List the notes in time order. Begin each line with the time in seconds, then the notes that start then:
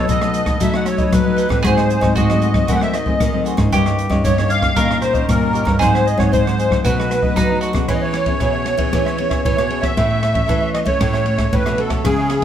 Already playing: F#3 A3 D#4 A4
0.08 F#2 B2 D#4 A4 B4 D#5, kick, closed hi-hat
0.21 F#3 A3 D#4 A4 B4 D#5, cross-stick, closed hi-hat
0.33 D#4 A4 B4 D#5, closed hi-hat
0.46 F#3 A3 D#4, kick, cross-stick, closed hi-hat
0.60 B2 F#3 A3 D#4 A4 B4 D#5 E5, kick, closed hi-hat
0.74 A4 B4 D#5 F#5, cross-stick
0.86 C#5, muted cavaquinho stroke, cross-stick, closed hi-hat
0.97 F#3 A3 D#4 A4 B4 D#5, kick, closed hi-hat
1.05 C#5
1.12 F#2 F#3 B4, kick, cross-stick, closed hi-hat
1.25 F#3 A3 D#4 A4 B4 D#5
1.36 D#4 A4 B4 D#5, closed hi-hat
1.49 A2 F#3 A3 C4 A4 B4 D#5, kick, cross-stick
1.63 G#2 F#4 G#4 C5 D#5, kick, cross-stick, closed hi-hat
1.77 G#4 C5 D#5, cross-stick, closed hi-hat
1.89 muted cavaquinho stroke, closed hi-hat
2.01 G#2 F#3 A3 C4 G#4 C5 D#5, kick, cross-stick, closed hi-hat
2.15 G#2 D#3 F#4 G#4 C5 D#5, kick, closed hi-hat
2.29 F#3 A3 C4 G#4 C5 D#5, cross-stick, closed hi-hat
2.41 F#4 G#4 C5 D#5, closed hi-hat
2.54 F#3 A3 C4, kick, cross-stick
2.67 G#2 D#3 F#3 A3 C4 F#4 G#4 C5 D#5 E5 F#5, kick, closed hi-hat
2.75 F#5
2.81 G#4 C5 D#5 E5, cross-stick
2.93 D#5, muted cavaquinho stroke, cross-stick, closed hi-hat
3.06 F#3 A3 C4 G#4 C5 D#5, kick
3.20 D#3, kick, cross-stick, closed hi-hat
3.33 F#3 A3 C4 G#4 C5 D#5
3.45 F#4 G#4 C5 D#5, closed hi-hat
3.57 G#2 D#3 A#3 C#4 G#4 C5 D#5, kick, cross-stick, closed hi-hat
3.72 G2 D#4 G4 C#5 D#5, kick, cross-stick, closed hi-hat
3.85 G4 C#5 D#5, cross-stick, closed hi-hat
3.98 muted cavaquinho stroke, closed hi-hat
4.09 G2 D#3 A#3 C#4 G4 C#5 D#5, kick, cross-stick
4.24 G2 D#4 G4 C#5 D#5, kick, closed hi-hat
4.37 D#3 A#3 C#4 G4 C#5 D#5, cross-stick, closed hi-hat
4.49 D#4 G4 C#5 D#5 F5, closed hi-hat
4.62 D#3 A#3 C#4, kick, cross-stick, closed hi-hat
4.76 G2 A#2 D#3 A#3 C#4 D#4 G4 A#4 C#5 D#5, kick, closed hi-hat
4.89 G4 C#5 D#5, cross-stick
5.00 C5, muted cavaquinho stroke, cross-stick, closed hi-hat
5.13 D#3 A#3 C#4 G4 C#5 D#5, kick, closed hi-hat
5.29 G2 A#2 A#4, kick, cross-stick, closed hi-hat
5.41 D#3 C#4 G4 C#5 D#5
5.53 D#4 G4 C#5 D#5, closed hi-hat
5.65 G2 G4 C#5 D#5, kick, cross-stick
5.79 G#2 F#3 C4 D#4 G#4 C5 F#5, kick, cross-stick, closed hi-hat
5.93 G#4 C5 F#5, cross-stick, closed hi-hat
6.05 D#5, muted cavaquinho stroke, closed hi-hat
6.17 G#2 F#3 C4 D#4 G#4 C5 C#5 F#5, kick, cross-stick, closed hi-hat
6.32 G#2 D#3 D#4 G#4 C5 F#5, kick, closed hi-hat
6.45 F#3 C4 D#4 G#4 C5 F#5, cross-stick, closed hi-hat
6.58 D#4 G#4 C5 F#5, closed hi-hat
6.70 F#3 A3 D#4, kick, cross-stick
6.84 B2 D#4 F#4 A4 B4 D#5, kick, closed hi-hat
6.99 A4 B4 D#5, cross-stick
7.11 muted cavaquinho stroke, cross-stick, closed hi-hat
7.22 F#3 A3 D#4 A4 B4 D#5, kick
7.36 F#2 F#3 D#4, kick, cross-stick, closed hi-hat
7.49 F#3 A3 D#4 A4 B4 D#5
7.61 D#4 F#4 A4 B4 D#5, closed hi-hat
7.73 B2 B3 C#4 G#4 B4 D#5, kick, cross-stick, closed hi-hat
7.77 A4
7.88 E3 E4 G#4 C#5 E5, kick, cross-stick, ride
7.94 D#5
8.02 G#4 C#5 E5
8.14 cross-stick, ride
8.26 B3 C#4 G#4 C#5 E5, kick, ride
8.40 B2 E4 G#4 C#5 E5, kick, cross-stick, ride
8.53 G#4 C#5 E5
8.66 cross-stick, ride
8.77 E3 B3 C#4 G#4 C#5 E5, kick, ride
8.92 E3 B3 C#4 E4 G#4 C#5 E5, kick, cross-stick, ride
9.05 G#4 C#5 E5, cross-stick
9.17 B3 C#4 G#4, muted cavaquinho stroke, ride
9.29 G#4 C#5 E5, kick, cross-stick, ride
9.44 B2 E3 C#5, kick, ride
9.57 B2 G#4 C#5 E5, cross-stick
9.69 B3 C#4 E4 G#4 C#5 E5, ride
9.81 G#4 C#5 E5, kick, cross-stick, ride
9.96 A2 E3 A3 C#4 E4 A4 C#5 E5, kick, cross-stick, ride
10.09 A4 C#5 E5
10.21 muted cavaquinho stroke, cross-stick, ride
10.33 E3 A3 C#4 A4 C#5 E5, kick, ride
10.46 E3 E4 A4 C#5 E5, kick, cross-stick, ride
10.61 A4 C#5 E5
10.74 D#5, cross-stick, ride
10.85 E3 A3 C#4 A4 C#5 E5, kick, ride
10.99 A2 E4 A4 C#5 E5, kick, cross-stick, ride
11.13 A4 C#5 E5, cross-stick
11.26 E3 A3 C#4, muted cavaquinho stroke, ride
11.37 A4 C#5 E5, kick, cross-stick, ride
11.52 A2 E3 A3 C#4 B4, kick, ride
11.66 B2 A4 C#5 E5, cross-stick
11.77 E3 A3 C#4 E4 A4 C#5 E5, ride
11.89 A4 C#5 E5, kick, cross-stick, ride
12.04 C#3 E3 G#3 C#4 E4 G#4 C#5 E5, kick, cross-stick, ride
12.18 G#4 C#5 E5
12.30 muted cavaquinho stroke, cross-stick, ride
12.41 E3 G#3